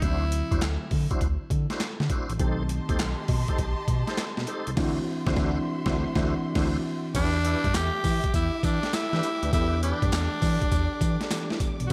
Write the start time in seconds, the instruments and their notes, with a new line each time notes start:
0.01 analog synth bass D2, fm electric piano D3 F#3 C4 E4, tonewheel organ D4 E4 F#4 C5, tenor saxophone E4, kick, closed hi-hat
0.32 closed hi-hat
0.51 analog synth bass E2, tonewheel organ D4 E4 F#4 C5, kick, closed hi-hat
0.61 analog synth bass D2, snare, clap, closed hi-hat
0.91 analog synth bass D3, kick, open hi-hat
1.11 tonewheel organ D4 E4 F#4 C5, kick, closed hi-hat
1.21 analog synth bass D2, kick, closed hi-hat
1.50 analog synth bass D3, kick, closed hi-hat
1.70 tonewheel organ D4 E4 F#4 C5, snare, closed hi-hat
1.80 snare, clap, closed hi-hat
2.00 analog synth bass D3, snare
2.10 tonewheel organ D4 E4 F#4 C5, kick, closed hi-hat
2.29 analog synth bass A1, closed hi-hat
2.39 analog synth bass B1, fm electric piano D#3 A3 C4 G4, tonewheel organ D#4 G4 A4 C5, string section G4 D#5 A5 C6, kick, closed hi-hat
2.69 closed hi-hat
2.89 analog synth bass D#2, tonewheel organ D#4 G4 A4 C5, kick, closed hi-hat
2.99 analog synth bass B1, snare, clap, closed hi-hat
3.28 analog synth bass B2, kick, open hi-hat
3.48 tonewheel organ D#4 G4 A4 C5, kick, closed hi-hat
3.58 analog synth bass B1, kick, closed hi-hat
3.88 analog synth bass B2, kick, closed hi-hat
4.07 tonewheel organ D#4 G4 A4 C5, snare, closed hi-hat
4.17 snare, clap, closed hi-hat
4.37 analog synth bass B2, snare
4.47 tonewheel organ D#4 G4 A4 C5, closed hi-hat
4.67 analog synth bass C2, closed hi-hat
4.76 analog synth bass D2, fm electric piano E3 C4 D4 E4, tonewheel organ D4 E4 F#4 C5, string section F#4 E5 C6, kick, snare, crash
4.85 fm electric piano F#4
5.26 analog synth bass D2, fm electric piano E3 C4 D4 E4, tonewheel organ D4 E4 F#4 C5, kick, snare
5.35 analog synth bass D2, fm electric piano E3 C4 D4 E4 F#4, tonewheel organ D4 E4 F#4 C5, kick, snare
5.44 fm electric piano F#4
5.85 analog synth bass D2, fm electric piano E3 C4 D4 E4, tonewheel organ D4 E4 F#4 C5, kick, snare
5.94 fm electric piano F#4
6.15 analog synth bass D2, fm electric piano E3 C4 D4 E4, tonewheel organ D4 E4 F#4 C5, kick, snare
6.23 fm electric piano F#4
6.54 analog synth bass D2, fm electric piano E3 C4 D4 E4, tonewheel organ D4 E4 F#4 C5, kick, snare, crash
6.63 fm electric piano F#4
7.13 analog synth bass E2, fm electric piano E3 B3 D4 G4, tonewheel organ D4 E4 G4 B4, tenor saxophone D4, string section G4 E5 D6, kick, closed hi-hat, crash, tambourine
7.44 tonewheel organ D4 E4 G4 B4, closed hi-hat
7.64 analog synth bass G2, kick, closed hi-hat
7.74 analog synth bass E2, tenor saxophone G4, snare, clap, closed hi-hat, tambourine
8.04 analog synth bass E3, kick, open hi-hat, tambourine
8.24 kick, closed hi-hat
8.34 analog synth bass E2, tenor saxophone E4, kick, closed hi-hat, tambourine
8.63 analog synth bass E3, tenor saxophone D4, kick, closed hi-hat, tambourine
8.83 snare, closed hi-hat
8.93 tenor saxophone E4, snare, clap, closed hi-hat, tambourine
9.13 analog synth bass E3, tonewheel organ D4 E4 G4 B4, snare
9.23 closed hi-hat, tambourine
9.42 analog synth bass D2, tonewheel organ D4 E4 G4 B4, closed hi-hat
9.51 analog synth bass E2, fm electric piano E3 B3 D4 A4, tonewheel organ D4 E4 G4 B4, tenor saxophone E4, string section D5, kick, closed hi-hat, tambourine
9.82 tonewheel organ D4 E4 G4 B4, tenor saxophone D4, closed hi-hat
10.02 analog synth bass G2, kick, closed hi-hat
10.12 analog synth bass E2, snare, clap, closed hi-hat, tambourine
10.42 analog synth bass E3, kick, open hi-hat, tambourine
10.62 kick, closed hi-hat
10.71 analog synth bass E2, kick, closed hi-hat, tambourine
11.01 analog synth bass E3, kick, closed hi-hat, tambourine
11.21 snare, closed hi-hat
11.30 fm electric piano E3 B3 D4 G4, snare, clap, closed hi-hat, tambourine
11.50 analog synth bass E3, snare
11.60 kick, closed hi-hat, tambourine
11.80 analog synth bass B1, closed hi-hat
11.87 fm electric piano E3, tenor saxophone F#4